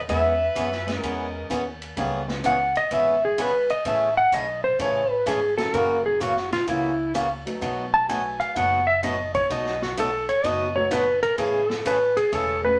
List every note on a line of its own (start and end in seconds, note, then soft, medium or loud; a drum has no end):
0.08 0.47 E2 medium
0.08 0.32 E3 medium
0.08 0.37 G#3 medium
0.08 0.37 B3 medium
0.08 0.32 B3 medium
0.08 0.37 C#4 medium
0.08 0.32 C#4 medium
0.08 0.38 E4 medium
0.08 0.38 G#4 medium
0.08 0.32 G#4 medium
0.08 0.99 B4 medium
0.08 0.99 E5 medium
0.08 kick soft
0.08 ride medium
0.55 0.96 F#2 medium
0.55 0.68 E3 medium
0.55 0.68 B3 medium
0.55 0.68 C#4 medium
0.55 0.68 G#4 medium
0.55 kick soft
0.55 hi-hat pedal medium
0.55 ride medium
0.72 snare soft
0.87 1.47 G#3 medium
0.87 1.47 B3 medium
0.87 1.47 C#4 medium
0.87 1.47 E4 medium
0.87 1.47 G#4 medium
0.87 snare soft
0.87 ride soft
0.99 1.46 A#4 medium
0.99 1.47 D#5 medium
1.03 1.43 E2 medium
1.03 1.26 E3 medium
1.03 1.26 B3 medium
1.03 1.26 C#4 medium
1.03 1.26 G#4 medium
1.03 kick soft
1.03 ride medium
1.50 1.90 D#2 medium
1.50 1.62 E3 medium
1.50 1.62 B3 medium
1.50 1.62 C#4 medium
1.50 1.63 G#4 medium
1.50 kick soft
1.50 hi-hat pedal medium
1.50 ride medium
1.82 ride medium
1.96 2.72 C#2 medium
1.96 2.20 C#3 medium
1.96 2.20 E3 medium
1.96 2.25 G3 medium
1.96 2.25 A#3 soft
1.96 2.20 B3 medium
1.96 2.26 C4 medium
1.96 2.21 C#4 medium
1.96 2.26 D#4 soft
1.96 2.26 G4 medium
1.96 2.21 G#4 medium
1.96 kick soft
1.96 ride medium
2.28 2.69 G#3 medium
2.28 2.69 B3 soft
2.28 2.69 C#4 medium
2.28 2.69 E4 soft
2.28 2.70 G#4 medium
2.28 snare soft
2.44 2.56 C#3 medium
2.44 2.56 E3 medium
2.44 2.57 B3 medium
2.44 2.57 C#4 medium
2.44 2.57 G#4 medium
2.44 2.76 F#5 medium
2.44 kick soft
2.44 hi-hat pedal medium
2.44 ride medium
2.75 2.92 D#5 loud
2.75 ride soft
2.91 3.66 G#1 medium
2.91 3.14 C#3 medium
2.91 3.14 E3 medium
2.91 3.14 B3 medium
2.91 3.14 C#4 medium
2.91 3.14 G#4 medium
2.91 3.23 E5 medium
2.91 kick soft
2.91 ride medium
3.25 3.39 G#4 medium
3.38 3.50 C#3 medium
3.38 3.50 E3 medium
3.38 3.50 B3 medium
3.38 3.50 C#4 medium
3.38 3.51 G#4 medium
3.38 3.70 B4 medium
3.38 kick soft
3.38 hi-hat pedal soft
3.38 ride medium
3.70 3.85 D#5 medium
3.70 ride soft
3.85 4.23 A1 medium
3.85 4.08 C#3 medium
3.85 4.08 E3 medium
3.85 4.08 A3 medium
3.85 4.08 C#4 medium
3.85 4.09 G#4 medium
3.85 4.17 E5 medium
3.85 kick soft
3.85 ride medium
4.17 4.32 F#5 medium
4.32 4.72 B1 medium
4.32 4.44 C#3 medium
4.32 4.45 E3 medium
4.32 4.45 A3 medium
4.32 4.45 C#4 medium
4.32 4.45 G#4 medium
4.32 4.64 D#5 medium
4.32 kick soft
4.32 hi-hat pedal medium
4.32 ride medium
4.64 4.79 C5 medium
4.79 5.19 A1 medium
4.79 5.02 C#3 medium
4.79 5.02 E3 medium
4.79 5.02 A3 medium
4.79 5.02 C#4 medium
4.79 5.03 G#4 medium
4.79 5.10 C#5 loud
4.79 kick soft
4.79 ride medium
5.10 5.26 B4 medium
5.26 5.67 G#1 medium
5.26 5.38 C#3 medium
5.26 5.39 E3 medium
5.26 5.38 A3 medium
5.26 5.39 C#4 medium
5.26 5.39 G#4 medium
5.26 5.57 G#4 medium
5.26 kick soft
5.26 hi-hat pedal medium
5.26 ride medium
5.57 6.17 F#3 medium
5.57 6.17 A#3 medium
5.57 6.17 C#4 medium
5.57 6.18 E4 medium
5.57 6.18 F#4 medium
5.57 5.75 A4 loud
5.57 snare soft
5.57 ride soft
5.73 6.49 F#1 medium
5.73 5.96 C#3 medium
5.73 5.96 E3 medium
5.73 5.97 A#3 medium
5.73 5.97 C#4 medium
5.73 5.97 F#4 medium
5.73 6.05 A#4 medium
5.73 kick soft
5.73 ride medium
6.06 6.21 G#4 medium
6.20 6.32 C#3 medium
6.20 6.33 E3 medium
6.20 6.33 A#3 medium
6.20 6.33 C#4 medium
6.20 6.33 F#4 medium
6.20 6.52 F#4 medium
6.20 kick soft
6.20 hi-hat pedal medium
6.20 ride medium
6.37 snare soft
6.52 6.68 F4 medium
6.52 snare soft
6.52 ride soft
6.67 7.43 C#2 medium
6.67 6.90 C#3 medium
6.67 6.90 E3 medium
6.67 6.91 A#3 medium
6.67 6.91 C#4 medium
6.67 7.12 E4 medium
6.67 6.91 F#4 medium
6.67 kick soft
6.67 ride medium
7.14 7.26 C#3 medium
7.14 7.27 E3 medium
7.14 7.27 A#3 medium
7.14 7.27 C#4 medium
7.14 7.27 F#4 medium
7.14 kick soft
7.14 hi-hat pedal medium
7.14 ride medium
7.46 8.06 F#3 medium
7.46 8.06 A3 medium
7.46 8.06 B3 medium
7.46 8.06 D#4 medium
7.46 8.06 F#4 medium
7.46 ride medium
7.61 8.37 B1 medium
7.61 7.84 B2 medium
7.61 7.84 F#3 medium
7.61 7.85 A3 medium
7.61 7.85 D#4 medium
7.61 7.85 F#4 medium
7.61 kick soft
7.61 ride medium
7.94 8.09 A5 medium
8.08 8.21 B2 medium
8.08 8.81 F#3 medium
8.08 8.21 F#3 medium
8.08 8.81 A3 medium
8.08 8.21 A3 medium
8.08 8.81 B3 medium
8.08 8.81 D#4 soft
8.08 8.21 D#4 medium
8.08 8.82 F#4 medium
8.08 8.21 F#4 medium
8.08 8.40 G#5 medium
8.08 kick soft
8.08 hi-hat pedal medium
8.08 ride medium
8.40 8.55 F5 medium
8.40 ride soft
8.56 9.31 F#1 medium
8.56 8.79 B2 medium
8.56 8.79 F#3 medium
8.56 8.79 A3 medium
8.56 8.79 D#4 medium
8.56 8.79 F#4 medium
8.56 8.87 F#5 medium
8.56 kick soft
8.56 ride medium
8.87 9.02 E5 medium
9.03 9.15 B2 medium
9.03 9.15 F#3 medium
9.03 9.15 A3 medium
9.03 9.15 D#4 medium
9.03 9.16 F#4 medium
9.03 9.34 D#5 medium
9.03 kick soft
9.03 hi-hat pedal soft
9.03 ride medium
9.34 9.50 C#5 medium
9.34 kick medium
9.34 ride medium
9.50 10.25 B1 medium
9.50 9.73 B2 medium
9.50 9.73 F#3 medium
9.50 9.73 A3 medium
9.50 9.73 D#4 medium
9.50 9.73 F#4 medium
9.50 9.81 D#5 medium
9.50 kick soft
9.50 ride medium
9.66 snare soft
9.82 9.97 F#4 soft
9.82 snare soft
9.97 10.09 B2 medium
9.97 10.09 F#3 medium
9.97 10.10 A3 medium
9.97 10.10 D#4 medium
9.97 10.10 F#4 medium
9.97 10.29 A4 medium
9.97 kick soft
9.97 hi-hat pedal medium
9.97 ride medium
10.29 10.46 C#5 medium
10.29 ride soft
10.44 11.19 F#1 medium
10.44 10.67 B2 medium
10.44 10.67 F#3 medium
10.44 10.67 A3 medium
10.44 10.67 D#4 medium
10.44 10.67 F#4 medium
10.44 10.76 D#5 medium
10.44 kick soft
10.44 ride medium
10.75 10.89 F#3 medium
10.75 10.90 A3 medium
10.75 10.90 B3 medium
10.75 10.90 D#4 medium
10.75 10.90 F#4 medium
10.75 10.91 C#5 medium
10.91 11.03 B2 medium
10.91 11.03 F#3 medium
10.91 11.03 A3 medium
10.91 11.04 D#4 medium
10.91 11.04 F#4 medium
10.91 11.22 B4 medium
10.91 kick soft
10.91 hi-hat pedal medium
10.91 ride medium
11.23 11.38 A#4 medium
11.23 ride soft
11.38 12.13 A1 loud
11.38 11.61 C#3 medium
11.38 11.61 E3 medium
11.38 11.61 A3 medium
11.38 11.61 C#4 medium
11.38 11.61 G#4 medium
11.38 11.69 G#4 medium
11.38 kick soft
11.38 ride medium
11.69 11.85 A4 medium
11.69 snare medium
11.85 11.97 C#3 medium
11.85 11.98 E3 medium
11.85 11.98 A3 medium
11.85 11.98 C#4 medium
11.85 11.98 G#4 medium
11.85 12.17 B4 medium
11.85 kick soft
11.85 hi-hat pedal medium
11.85 ride medium
12.17 12.32 G#4 medium
12.17 ride medium
12.32 12.79 E1 medium
12.32 12.55 C#3 medium
12.32 12.55 E3 medium
12.32 12.55 A3 medium
12.32 12.55 C#4 medium
12.32 12.56 G#4 medium
12.32 12.64 A4 medium
12.32 kick soft
12.32 ride medium
12.63 12.78 A3 medium
12.63 12.78 B3 medium
12.63 12.78 C#4 medium
12.63 12.78 E4 medium
12.63 12.78 G#4 medium
12.63 12.79 B4 medium